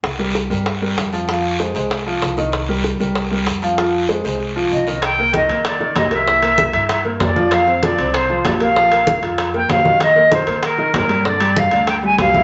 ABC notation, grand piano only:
X:1
M:4/4
L:1/8
Q:1/4=193
K:Cm
V:1 name="Grand piano"
z [G,GB]2 [G,GB]2 [G,GB]2 [F,Ff] | [F,Ff]2 [A,Ac] [A,Ac]2 [F,Ff]2 [E,Ee]- | [E,Ee] [G,GB]2 [G,GB]2 [G,GB]2 [F,Ff] | [F,Ff]2 [A,Ac] [A,Ac]2 [F,Ff]2 [E,Ee] |
z [B,B] [E,E] [B,B]2 [E,E]2 [B,B] | [=E,=E] [B,B]2 [E=e]2 [B,B]2 [F,F]- | [F,F] [Cc] [F,F] [Cc]2 [F,F]2 [B,B] | [F,F] [B,B]2 [Ff]2 [B,B]2 [E,E]- |
[E,E] [B,B] [E,E] [B,B]2 [E,E]2 [G,G] | [D,D] [G,G]2 [Dd]2 [G,G]2 [=E,=E] |]